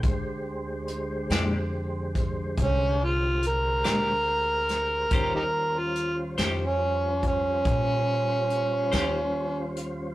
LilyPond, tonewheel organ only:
\new Staff \with { instrumentName = "Tonewheel organ" } { \time 12/8 \key ees \major \tempo 4. = 47 <d aes g' c''>1. | <g des' f' c''>1. | }